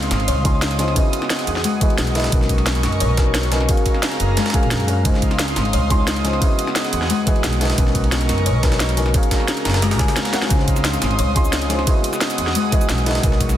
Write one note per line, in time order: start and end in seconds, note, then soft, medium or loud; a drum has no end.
0.00 0.42 G#3 medium
0.00 0.10 C4 medium
0.00 0.43 D#4 medium
0.00 0.44 F4 medium
0.00 0.44 C5 medium
0.00 0.95 F5 medium
0.00 0.95 C6 medium
0.00 2.30 D#6 medium
0.00 closed hi-hat soft
0.11 0.29 G#1 medium
0.11 snare medium
0.11 closed hi-hat medium
0.11 ride medium
0.20 ride soft
0.28 0.95 C#2 medium
0.28 0.44 C#5 loud
0.28 closed hi-hat medium
0.28 ride medium
0.44 0.77 G#3 medium
0.44 0.77 C#4 medium
0.44 0.60 D#4 medium
0.44 0.77 D#4 medium
0.44 0.77 F4 medium
0.44 0.78 C6 loud
0.44 kick medium
0.44 closed hi-hat medium
0.44 ride medium
0.62 snare loud
0.62 closed hi-hat medium
0.62 ride medium
0.71 closed hi-hat soft
0.71 ride soft
0.78 0.94 C#3 medium
0.78 0.94 G#3 medium
0.78 0.94 C#4 medium
0.78 0.94 D#4 medium
0.78 0.94 F4 medium
0.78 0.95 C5 medium
0.78 snare soft
0.78 closed hi-hat medium
0.78 ride medium
0.88 snare soft
0.94 1.78 B3 medium
0.94 1.12 C#4 medium
0.94 1.79 E4 medium
0.94 1.79 F#4 medium
0.94 2.31 G#4 medium
0.94 1.80 G#4 medium
0.94 2.31 F#5 medium
0.94 kick loud
0.94 closed hi-hat medium
0.94 ride medium
0.98 1.80 D#5 medium
1.13 closed hi-hat medium
1.13 ride medium
1.22 snare soft
1.30 1.47 B3 medium
1.30 snare loud
1.30 closed hi-hat medium
1.30 ride medium
1.39 snare soft
1.39 closed hi-hat soft
1.47 1.63 E2 medium
1.47 closed hi-hat medium
1.47 ride medium
1.56 snare soft
1.64 1.81 G#3 medium
1.64 closed hi-hat medium
1.64 ride medium
1.80 2.13 E3 medium
1.80 2.13 B3 medium
1.80 1.98 D#4 loud
1.80 2.13 F#4 medium
1.80 2.14 G#4 medium
1.80 2.14 D#5 loud
1.80 kick loud
1.80 closed hi-hat medium
1.80 ride medium
1.90 ride soft
1.98 2.31 B1 medium
1.98 snare loud
1.98 closed hi-hat medium
1.98 ride medium
2.07 closed hi-hat soft
2.14 2.31 C#3 medium
2.14 2.30 B3 medium
2.14 2.30 E4 medium
2.14 2.31 F#4 medium
2.14 2.31 G#4 medium
2.14 2.31 D#5 loud
2.14 snare medium
2.14 closed hi-hat medium
2.14 ride medium
2.20 snare medium
2.20 ride medium
2.24 snare loud
2.24 ride medium
2.30 2.82 B1 loud
2.30 3.15 F#3 medium
2.30 3.15 B3 medium
2.30 3.16 C#4 medium
2.30 2.48 C#4 medium
2.30 3.16 D#4 medium
2.30 3.68 A#4 medium
2.30 3.68 D#5 medium
2.30 3.68 C#6 medium
2.30 kick loud
2.30 closed hi-hat medium
2.30 ride medium
2.34 3.17 A#4 medium
2.41 snare soft
2.49 kick medium
2.49 closed hi-hat medium
2.49 ride medium
2.58 snare soft
2.58 ride soft
2.66 2.83 B3 medium
2.66 snare loud
2.66 closed hi-hat medium
2.66 ride medium
2.75 closed hi-hat soft
2.83 3.02 F#1 medium
2.83 snare soft
2.83 snare medium
2.83 closed hi-hat medium
2.83 ride medium
2.92 ride soft
3.00 3.68 B1 medium
3.00 3.17 C#5 medium
3.00 closed hi-hat medium
3.00 ride medium
3.17 3.49 F#3 medium
3.17 3.50 B3 medium
3.17 3.50 C#4 medium
3.17 3.33 D#4 medium
3.17 3.50 D#4 medium
3.17 3.50 A#4 loud
3.17 kick loud
3.17 snare loud
3.17 closed hi-hat medium
3.17 ride medium
3.35 snare loud
3.35 closed hi-hat medium
3.35 ride medium
3.43 closed hi-hat soft
3.43 ride soft
3.50 3.67 C#3 medium
3.50 3.66 F#3 medium
3.50 3.66 B3 medium
3.50 3.67 C#4 medium
3.50 3.67 D#4 medium
3.50 3.67 A#4 medium
3.50 snare loud
3.50 closed hi-hat medium
3.50 ride medium
3.60 snare soft
3.68 3.84 C#4 loud
3.68 4.52 F#4 medium
3.68 4.52 G#4 medium
3.68 5.04 G#4 medium
3.68 4.53 A#4 medium
3.68 5.04 F5 medium
3.68 4.53 F5 medium
3.68 5.04 A#5 medium
3.68 kick loud
3.68 closed hi-hat medium
3.68 ride medium
3.77 closed hi-hat soft
3.86 kick medium
3.86 closed hi-hat medium
3.86 ride medium
3.94 snare soft
4.03 4.19 C4 medium
4.03 snare loud
4.03 closed hi-hat medium
4.03 ride medium
4.11 snare soft
4.11 closed hi-hat soft
4.20 4.35 F#1 medium
4.20 closed hi-hat medium
4.20 ride medium
4.37 4.53 G#3 medium
4.37 snare loud
4.37 closed hi-hat medium
4.37 ride medium
4.46 snare medium
4.46 ride medium
4.50 4.86 C#4 medium
4.50 4.86 F#4 medium
4.50 snare medium
4.50 closed hi-hat medium
4.50 ride medium
4.54 4.86 G#4 medium
4.54 4.70 G#4 medium
4.54 4.87 A#4 medium
4.54 4.87 F5 loud
4.54 kick loud
4.54 ride medium
4.63 4.73 A#1 loud
4.63 ride soft
4.71 5.04 F#2 loud
4.71 snare loud
4.71 closed hi-hat medium
4.71 ride medium
4.80 closed hi-hat soft
4.87 5.03 C#4 medium
4.87 4.98 C#4 medium
4.87 5.03 F#4 medium
4.87 5.03 G#4 medium
4.87 5.04 A#4 medium
4.87 5.04 F5 medium
4.87 closed hi-hat medium
4.87 ride medium
5.03 5.55 C#2 medium
5.03 5.87 G#3 medium
5.03 5.21 C#4 medium
5.03 5.88 D#4 medium
5.03 5.89 F4 medium
5.03 6.40 F5 medium
5.03 6.40 C6 medium
5.03 7.75 D#6 medium
5.03 kick loud
5.03 closed hi-hat medium
5.03 ride medium
5.07 5.89 C5 medium
5.14 snare soft
5.22 kick medium
5.22 closed hi-hat medium
5.22 ride medium
5.31 snare soft
5.31 ride soft
5.39 5.56 C4 medium
5.39 snare loud
5.39 closed hi-hat medium
5.39 ride medium
5.48 closed hi-hat soft
5.56 5.75 G#1 medium
5.56 snare soft
5.56 closed hi-hat medium
5.56 ride medium
5.65 ride soft
5.73 6.40 C#2 medium
5.73 5.90 C#5 medium
5.73 closed hi-hat medium
5.73 ride medium
5.89 6.22 G#3 medium
5.89 6.22 C#4 medium
5.89 6.23 D#4 medium
5.89 6.06 D#4 medium
5.89 6.23 F4 medium
5.89 6.23 C6 loud
5.89 kick loud
5.89 closed hi-hat medium
5.89 ride medium
6.07 snare loud
6.07 closed hi-hat medium
6.07 ride medium
6.16 closed hi-hat soft
6.16 ride soft
6.24 6.40 C#3 medium
6.24 6.39 G#3 medium
6.24 6.39 C#4 medium
6.24 6.40 D#4 medium
6.24 6.40 F4 medium
6.24 6.40 C5 medium
6.24 snare soft
6.24 closed hi-hat medium
6.24 ride medium
6.33 snare soft
6.39 7.24 B3 medium
6.39 6.57 C#4 medium
6.39 7.24 E4 medium
6.39 7.25 F#4 medium
6.39 7.77 G#4 medium
6.39 7.25 G#4 medium
6.39 7.77 F#5 medium
6.39 kick loud
6.39 closed hi-hat medium
6.39 ride medium
6.44 7.26 D#5 medium
6.59 closed hi-hat medium
6.59 ride medium
6.67 snare soft
6.76 6.92 B3 medium
6.76 snare loud
6.76 closed hi-hat medium
6.76 ride medium
6.84 snare soft
6.84 closed hi-hat soft
6.93 7.08 E2 medium
6.93 closed hi-hat medium
6.93 ride medium
7.02 snare soft
7.10 7.26 G#3 loud
7.10 closed hi-hat medium
7.10 ride medium
7.26 7.59 E3 medium
7.26 7.58 B3 medium
7.26 7.43 D#4 loud
7.26 7.59 F#4 medium
7.26 7.59 G#4 medium
7.26 7.59 D#5 loud
7.26 kick loud
7.26 closed hi-hat medium
7.26 ride medium
7.36 ride soft
7.44 7.77 B1 medium
7.44 snare loud
7.44 closed hi-hat medium
7.44 ride medium
7.53 closed hi-hat soft
7.60 7.76 C#3 medium
7.60 7.75 B3 medium
7.60 7.76 E4 medium
7.60 7.76 F#4 medium
7.60 7.76 G#4 medium
7.60 7.76 D#5 loud
7.60 snare medium
7.60 closed hi-hat medium
7.60 ride medium
7.65 snare medium
7.65 ride medium
7.70 snare loud
7.70 ride medium
7.76 8.28 B1 medium
7.76 8.60 F#3 medium
7.76 8.61 B3 medium
7.76 8.61 C#4 medium
7.76 7.93 C#4 medium
7.76 8.62 D#4 medium
7.76 9.13 A#4 medium
7.76 9.13 D#5 medium
7.76 9.13 C#6 medium
7.76 kick loud
7.76 closed hi-hat medium
7.76 ride medium
7.80 8.62 A#4 loud
7.87 snare soft
7.95 kick medium
7.95 closed hi-hat medium
7.95 ride medium
8.04 ride soft
8.12 8.28 B3 medium
8.12 snare loud
8.12 closed hi-hat medium
8.12 ride medium
8.21 closed hi-hat soft
8.29 8.48 F#1 medium
8.29 snare medium
8.29 snare soft
8.29 closed hi-hat medium
8.29 ride medium
8.38 ride soft
8.46 9.13 B1 medium
8.46 8.62 C#5 loud
8.46 closed hi-hat medium
8.46 ride medium
8.62 8.95 F#3 medium
8.62 8.95 B3 medium
8.62 8.95 C#4 medium
8.62 8.79 D#4 medium
8.62 8.95 D#4 medium
8.62 8.96 A#4 loud
8.62 kick loud
8.62 snare loud
8.62 closed hi-hat medium
8.62 ride medium
8.72 snare medium
8.72 ride medium
8.80 snare loud
8.80 closed hi-hat loud
8.80 ride medium
8.89 closed hi-hat soft
8.89 ride soft
8.96 9.13 C#3 medium
8.96 9.12 F#3 medium
8.96 9.12 B3 medium
8.96 9.12 C#4 medium
8.96 9.13 D#4 medium
8.96 9.13 A#4 loud
8.96 snare soft
8.96 closed hi-hat medium
8.96 ride medium
9.06 snare soft
9.13 9.30 C#4 medium
9.13 9.97 F#4 medium
9.13 10.49 G#4 medium
9.13 9.98 G#4 medium
9.13 9.98 A#4 medium
9.13 11.84 F5 medium
9.13 9.99 F5 medium
9.13 10.49 A#5 medium
9.13 kick loud
9.13 closed hi-hat loud
9.13 ride medium
9.23 closed hi-hat soft
9.31 kick medium
9.31 snare loud
9.31 closed hi-hat medium
9.31 ride medium
9.40 snare soft
9.48 9.65 C4 medium
9.48 snare loud
9.48 snare soft
9.48 closed hi-hat medium
9.48 ride medium
9.57 closed hi-hat soft
9.57 ride soft
9.65 10.00 F#1 medium
9.65 snare medium
9.65 closed hi-hat medium
9.65 ride medium
9.70 snare medium
9.70 ride medium
9.74 snare soft
9.74 snare loud
9.74 ride medium
9.82 9.99 G#3 medium
9.82 snare loud
9.82 closed hi-hat loud
9.82 ride medium
9.91 snare loud
9.91 ride medium
9.99 10.07 C#2 medium
9.99 10.07 C#4 medium
9.99 10.07 F#4 medium
9.99 10.15 G#4 loud
9.99 10.07 G#4 medium
9.99 10.07 A#4 medium
9.99 10.08 G#5 medium
9.99 kick loud
9.99 snare loud
9.99 closed hi-hat medium
9.99 ride medium
10.08 snare medium
10.08 ride medium
10.16 10.33 C4 medium
10.16 snare loud
10.16 closed hi-hat medium
10.16 ride medium
10.25 snare loud
10.25 closed hi-hat soft
10.25 ride medium
10.32 10.48 C#4 medium
10.32 10.48 F#4 medium
10.32 10.49 G#4 medium
10.32 10.49 A#4 medium
10.32 10.50 C#5 medium
10.32 10.49 F#5 medium
10.32 snare medium
10.32 closed hi-hat medium
10.32 ride medium
10.42 snare medium
10.42 snare soft
10.49 11.01 C#2 loud
10.49 11.33 G#3 medium
10.49 10.66 C#4 loud
10.49 11.34 D#4 medium
10.49 11.34 F4 medium
10.49 11.86 C6 medium
10.49 11.86 D#6 medium
10.49 kick loud
10.49 closed hi-hat medium
10.49 ride medium
10.49 cabasa soft
10.53 11.35 C5 medium
10.59 snare soft
10.68 kick medium
10.68 closed hi-hat medium
10.68 ride medium
10.68 cabasa soft
10.76 snare soft
10.76 ride soft
10.76 cabasa medium
10.85 11.01 C4 medium
10.85 snare loud
10.85 closed hi-hat medium
10.85 ride medium
10.93 closed hi-hat soft
10.93 cabasa soft
11.02 11.20 G#1 medium
11.02 snare medium
11.02 closed hi-hat medium
11.02 ride medium
11.11 ride soft
11.19 11.86 C#2 medium
11.19 11.35 C#5 loud
11.19 closed hi-hat loud
11.19 ride medium
11.19 cabasa soft
11.35 11.67 G#3 medium
11.35 11.68 C#4 medium
11.35 11.51 D#4 medium
11.35 11.68 D#4 medium
11.35 11.68 F4 medium
11.35 11.69 C6 loud
11.35 kick loud
11.35 closed hi-hat medium
11.35 ride medium
11.35 cabasa soft
11.45 cabasa medium
11.53 snare loud
11.53 closed hi-hat medium
11.53 ride medium
11.53 cabasa soft
11.62 closed hi-hat soft
11.62 ride soft
11.69 11.85 C#3 medium
11.69 11.85 G#3 medium
11.69 11.85 C#4 medium
11.69 11.85 D#4 medium
11.69 11.85 F4 medium
11.69 11.86 C5 medium
11.69 snare soft
11.69 closed hi-hat medium
11.69 ride medium
11.79 snare soft
11.85 12.69 B3 medium
11.85 12.02 C#4 medium
11.85 12.70 E4 medium
11.85 12.70 F#4 medium
11.85 13.22 G#4 medium
11.85 12.71 G#4 medium
11.85 13.22 F#5 medium
11.85 13.22 D#6 medium
11.85 kick loud
11.85 closed hi-hat medium
11.85 ride medium
11.85 cabasa soft
11.89 12.71 D#5 medium
12.04 closed hi-hat medium
12.04 ride medium
12.04 cabasa soft
12.13 snare soft
12.13 cabasa medium
12.21 12.37 B3 medium
12.21 snare loud
12.21 closed hi-hat medium
12.21 ride medium
12.30 snare soft
12.30 closed hi-hat soft
12.30 cabasa soft
12.38 12.54 E2 medium
12.38 closed hi-hat medium
12.38 ride medium
12.47 snare soft
12.55 12.72 G#3 loud
12.55 closed hi-hat medium
12.55 ride medium
12.55 cabasa soft
12.71 13.04 E3 medium
12.71 13.04 B3 medium
12.71 12.89 D#4 medium
12.71 13.04 F#4 medium
12.71 13.05 G#4 medium
12.71 13.05 D#5 loud
12.71 kick loud
12.71 closed hi-hat medium
12.71 ride medium
12.71 cabasa soft
12.81 ride soft
12.81 cabasa medium
12.89 13.22 B1 medium
12.89 snare loud
12.89 closed hi-hat medium
12.89 ride medium
12.89 cabasa soft
12.98 closed hi-hat soft
13.05 13.22 C#3 medium
13.05 13.21 B3 medium
13.05 13.21 E4 medium
13.05 13.22 F#4 medium
13.05 13.22 G#4 medium
13.05 13.22 D#5 loud
13.05 snare medium
13.05 closed hi-hat medium
13.05 ride medium
13.11 snare medium
13.11 ride medium
13.15 snare loud
13.15 ride medium
13.21 13.57 B1 loud
13.21 13.57 F#3 medium
13.21 13.57 B3 medium
13.21 13.57 C#4 medium
13.21 13.39 C#4 loud
13.21 13.57 D#4 medium
13.21 13.57 A#4 medium
13.21 13.57 D#5 medium
13.21 13.57 C#6 medium
13.21 kick loud
13.21 closed hi-hat medium
13.21 ride medium
13.21 cabasa soft
13.26 13.57 A#4 medium
13.32 snare soft
13.41 kick medium
13.41 closed hi-hat medium
13.41 ride medium
13.41 cabasa soft
13.49 snare soft
13.49 ride soft
13.49 cabasa medium